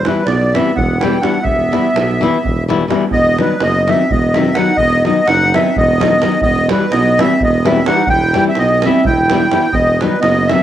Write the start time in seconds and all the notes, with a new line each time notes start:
0.04 E3 G3 B3 B4, davul high
0.08 E4
0.26 B1 B3 D5, davul high
0.41 davul high
0.54 E3 G3 B3 C4 E4 E5, davul high
0.66 davul high
0.74 E1 B3 F#5, davul low
1.00 E3 G3 E4 G5, davul high
1.04 B3
1.13 davul high
1.21 E3 G3 B3 D4 E4 F#5, davul high
1.34 davul high
1.42 E1 B3 E5, davul low
1.60 davul high
1.72 E3 G3 B3 E4, davul high
1.85 davul high
1.95 B1, davul high
2.10 davul high
2.21 E3 G3 B3 E4, davul high
2.34 davul high
2.44 E1, davul low
2.68 E3 G3 B3 E4, davul high
2.81 davul high
2.88 E3 G3 B3 E4, davul high
3.01 davul high
3.10 E1 B3 D#5, davul low
3.25 davul high
3.38 D#3 F#3 G3 B3 D#4 B4, davul high
3.60 F#1 B3 D#5, davul high
3.75 davul high
3.87 D#3 F#3 B3 D#4 E5, davul high
3.92 C4
4.10 E1 B3 D#5, davul low
4.22 davul high
4.34 D#3 F#3 B3 C4 D#4 E5, davul high
4.45 davul high
4.54 D#3 F#3 B3 D#4 F#5, davul high
4.59 D#4
4.66 davul high
4.77 E1 B3 D#5, davul low
4.91 davul high
5.04 D#3 F#3 B3 D#4 D#5, davul high
5.26 F#1 D#4 F#5, davul high
5.41 davul high
5.54 D#3 F#3 B3 C4 D#4 E5, davul high
5.76 E1 B3 D#5, davul low
5.89 davul high
6.00 D#3 F#3 B3 D#4, davul high
6.11 davul high
6.22 D#3 F#3 B3 D#4, davul high
6.32 davul high
6.41 E1 B3 D#5, davul low
6.56 davul high
6.69 E3 G3 B3 E4 B4, davul high
6.92 B1 B3 D#5, davul high
7.05 davul high
7.18 E3 G3 B3 C4 E4 E5, davul high
7.40 E1 B3 D#5, davul low
7.54 davul high
7.65 E3 G3 B3 C4 E4 E5, davul high
7.76 davul high
7.86 E3 G3 B3 D#4 E4 F#5, davul high
7.96 davul high
8.07 E1 E4 G5, davul low
8.20 davul high
8.34 E3 G3 B3 E4, davul high
8.45 C4 E5, davul high
8.55 B1 B3 D#5, davul high
8.69 davul high
8.82 E3 C4 E5, davul high
8.86 G3 B3 E4
8.94 davul high
9.05 E1 E4 G5, davul low
9.17 davul high
9.30 E3 G3 B3 E4, davul high
9.51 E3 G3 B3 E4, davul high
9.62 davul high
9.72 E1 B3 D#5, davul low
9.87 davul high
10.00 D#3 F#3 G3 B3 D#4 B4, davul high
10.20 F#1 B3 D#5, davul high
10.35 davul high
10.48 D#3 F#3 B3 C4 D#4 E5, davul high